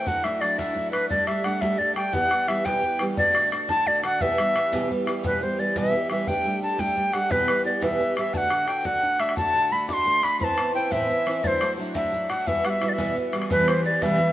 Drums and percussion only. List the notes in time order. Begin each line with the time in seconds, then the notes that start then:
0.07 bodhran
0.24 bodhran
0.42 bodhran
0.59 bodhran
0.76 bodhran
0.93 bodhran
1.10 bodhran
1.27 bodhran
1.44 bodhran
1.62 bodhran
1.79 bodhran
1.96 bodhran
2.13 bodhran
2.31 bodhran
2.48 bodhran
2.66 bodhran
2.83 bodhran
2.99 bodhran
3.17 bodhran
3.35 bodhran
3.52 bodhran
3.69 bodhran
3.86 bodhran
4.04 bodhran
4.21 bodhran
4.38 bodhran
4.56 bodhran
4.73 bodhran
4.90 bodhran
5.07 bodhran
5.24 bodhran
5.34 bodhran
5.76 bodhran
5.84 bodhran
5.93 bodhran
6.10 bodhran
6.27 bodhran
6.79 bodhran
6.88 bodhran
6.96 bodhran
7.13 bodhran
7.31 bodhran
7.39 bodhran
7.48 bodhran
7.82 bodhran
7.91 bodhran
8.00 bodhran
8.17 bodhran
8.34 bodhran
8.43 bodhran
8.50 bodhran
8.68 bodhran
8.85 bodhran
8.94 bodhran
9.03 bodhran
9.20 bodhran
9.29 bodhran
9.37 bodhran
9.89 bodhran
9.98 bodhran
10.06 bodhran
10.23 bodhran
10.41 bodhran
10.50 bodhran
10.58 bodhran
10.92 bodhran
11.01 bodhran
11.10 bodhran
11.27 bodhran
11.44 bodhran
11.53 bodhran
11.61 bodhran
11.95 bodhran
12.04 bodhran
12.13 bodhran
12.30 bodhran
12.47 bodhran
12.56 bodhran
12.65 bodhran
12.82 bodhran
12.98 bodhran
13.07 bodhran
13.16 bodhran
13.33 bodhran
13.42 bodhran
13.51 bodhran
13.60 bodhran
13.68 bodhran
14.02 bodhran
14.10 bodhran
14.19 bodhran